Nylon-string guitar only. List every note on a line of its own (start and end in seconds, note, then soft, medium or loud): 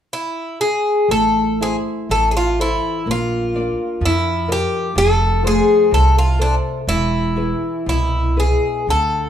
1.09 2.07 A3 soft
1.61 2.40 E4 soft
1.61 2.40 C5 soft
2.10 3.04 E3 soft
2.59 2.97 E4 soft
2.59 2.98 A4 soft
2.59 2.98 C5 soft
3.07 3.99 A#3 soft
3.54 4.30 D4 soft
3.54 4.31 A#4 soft
3.54 4.31 D5 soft
4.01 4.94 F3 medium
4.48 4.87 F4 soft
4.48 4.87 A#4 soft
4.48 4.87 D5 soft
4.95 5.89 F3 medium
5.43 6.20 A3 soft
5.43 6.20 F4 soft
5.43 6.20 C5 soft
5.91 6.85 C3 medium
6.38 6.78 F4 soft
6.38 6.78 A4 soft
6.38 6.78 C5 soft
6.88 7.84 E3 medium
7.36 8.17 E4 soft
7.36 8.17 G#4 soft
7.36 8.17 B4 soft
7.86 8.85 B2 medium
8.37 8.77 E4 soft
8.37 8.78 G#4 soft
8.37 8.78 B4 soft
8.88 9.29 D3 soft